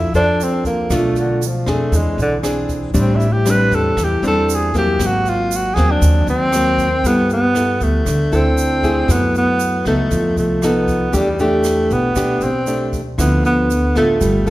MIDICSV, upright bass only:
0, 0, Header, 1, 2, 480
1, 0, Start_track
1, 0, Key_signature, 1, "major"
1, 0, Tempo, 511945
1, 845, Time_signature, 4, 2, 24, 8
1, 13595, End_track
2, 0, Start_track
2, 0, Title_t, "Upright bass"
2, 0, Program_c, 0, 32
2, 0, Note_on_c, 0, 41, 84
2, 109, Note_off_c, 0, 41, 0
2, 129, Note_on_c, 0, 41, 72
2, 809, Note_off_c, 0, 41, 0
2, 847, Note_on_c, 0, 35, 90
2, 1529, Note_off_c, 0, 35, 0
2, 1565, Note_on_c, 0, 41, 76
2, 1788, Note_off_c, 0, 41, 0
2, 1800, Note_on_c, 0, 40, 94
2, 2026, Note_off_c, 0, 40, 0
2, 2042, Note_on_c, 0, 35, 80
2, 2726, Note_off_c, 0, 35, 0
2, 2761, Note_on_c, 0, 33, 94
2, 3446, Note_off_c, 0, 33, 0
2, 3485, Note_on_c, 0, 40, 72
2, 3709, Note_off_c, 0, 40, 0
2, 3722, Note_on_c, 0, 40, 89
2, 3947, Note_off_c, 0, 40, 0
2, 3959, Note_on_c, 0, 40, 80
2, 4645, Note_off_c, 0, 40, 0
2, 4681, Note_on_c, 0, 32, 88
2, 5366, Note_off_c, 0, 32, 0
2, 5400, Note_on_c, 0, 39, 80
2, 5626, Note_off_c, 0, 39, 0
2, 5641, Note_on_c, 0, 39, 90
2, 5866, Note_off_c, 0, 39, 0
2, 5876, Note_on_c, 0, 39, 83
2, 6564, Note_off_c, 0, 39, 0
2, 6600, Note_on_c, 0, 43, 83
2, 7286, Note_off_c, 0, 43, 0
2, 7321, Note_on_c, 0, 38, 70
2, 7547, Note_off_c, 0, 38, 0
2, 7561, Note_on_c, 0, 38, 81
2, 7787, Note_off_c, 0, 38, 0
2, 7806, Note_on_c, 0, 38, 71
2, 8489, Note_off_c, 0, 38, 0
2, 8517, Note_on_c, 0, 42, 82
2, 9204, Note_off_c, 0, 42, 0
2, 9242, Note_on_c, 0, 37, 73
2, 9467, Note_off_c, 0, 37, 0
2, 9481, Note_on_c, 0, 41, 83
2, 9707, Note_off_c, 0, 41, 0
2, 9717, Note_on_c, 0, 36, 66
2, 10404, Note_off_c, 0, 36, 0
2, 10442, Note_on_c, 0, 40, 87
2, 11126, Note_off_c, 0, 40, 0
2, 11165, Note_on_c, 0, 35, 75
2, 11388, Note_off_c, 0, 35, 0
2, 11400, Note_on_c, 0, 35, 81
2, 11626, Note_off_c, 0, 35, 0
2, 11646, Note_on_c, 0, 35, 74
2, 12328, Note_off_c, 0, 35, 0
2, 12363, Note_on_c, 0, 38, 90
2, 13046, Note_off_c, 0, 38, 0
2, 13090, Note_on_c, 0, 33, 71
2, 13311, Note_off_c, 0, 33, 0
2, 13326, Note_on_c, 0, 31, 84
2, 13549, Note_off_c, 0, 31, 0
2, 13595, End_track
0, 0, End_of_file